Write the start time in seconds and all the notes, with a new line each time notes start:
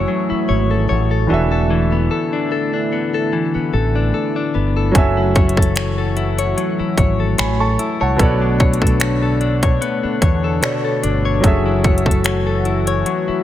Already playing: E3 F#3 A3 C#4 E4 F#4 G#4 A4 C#5 E5
0.08 F#3
0.30 E4, muted fretless electric bass stroke
0.49 G#1 C#5
0.71 A4
0.89 A1 C#5
1.11 A4
1.27 E1 D3 E3 D4 E4 F#4
1.32 A4 E5
1.52 A4
1.70 E3
1.92 B3
2.11 A4
2.33 D4
2.52 A4
2.74 D4
2.93 B3
3.14 A4
3.33 E3
3.55 B3, muted fretless electric bass stroke
3.74 A1 A4
3.96 D4
4.14 A4
4.36 D4
4.55 G1 B3
4.77 A4
4.92 F#1 E3 F#3 A3 C#4 F#4 G#5, kick, closed hi-hat
4.97 A4 E5
5.17 E4
5.36 C#5, kick, closed hi-hat
5.49 closed hi-hat
5.57 A4, kick
5.62 closed hi-hat
5.76 C#5, finger snap, closed hi-hat
5.98 A4
6.17 E4, closed hi-hat
6.38 C#5, closed hi-hat
6.57 F#3, closed hi-hat
6.79 E4, muted fretless electric bass stroke
6.98 G#1 C#5, kick, closed hi-hat
7.20 A4
7.38 A1 C#5 G#5 B5, finger snap, closed hi-hat
7.60 A4 A5 C#6
7.79 E4, closed hi-hat
8.01 C2 C#5 F#5 A5
8.16 B1 B2 D3 B3 D4 A4, kick, closed hi-hat
8.21 C#5 D5
8.41 D4
8.60 C#5, kick, closed hi-hat
8.73 closed hi-hat
8.82 A4, kick
8.87 closed hi-hat
9.00 C#5, finger snap, closed hi-hat
9.22 A4
9.41 D4, closed hi-hat
9.63 C#5, kick, closed hi-hat
9.82 B3, closed hi-hat
10.03 D4, muted fretless electric bass stroke
10.22 E2 C#5, kick, closed hi-hat
10.44 A4
10.61 B2 B3 A4 C#5 D5, finger snap, closed hi-hat
10.84 A4
11.03 G1 D4, closed hi-hat
11.25 C#5
11.40 F#1 E3 F#3 C#4 F#4 G#4, kick, closed hi-hat
11.45 A4 E5
11.66 E4
11.84 C#5, kick, closed hi-hat
11.98 closed hi-hat
12.06 A4, kick
12.11 closed hi-hat
12.24 C#5, finger snap, closed hi-hat
12.47 A4
12.65 E4, closed hi-hat
12.87 C#5, closed hi-hat
13.06 F#3, closed hi-hat
13.28 E4, muted fretless electric bass stroke